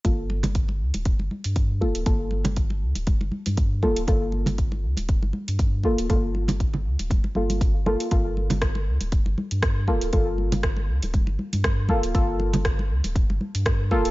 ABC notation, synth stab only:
X:1
M:4/4
L:1/8
Q:"Swing 16ths" 1/4=119
K:Gm
V:1 name="Synth stab"
[B,FA]6- [B,FA] [B,FA] | [B,FA]6- [B,FA] [B,FA] | [B,FA]6- [B,FA] [B,FA] | [B,FA]4- [B,FA] [B,FA]2 [B,FA] |
[B,FA]6- [B,FA] [B,FA] | [B,FA]6- [B,FA] [B,FA] | [B,FA]6- [B,FA] [B,FA] |]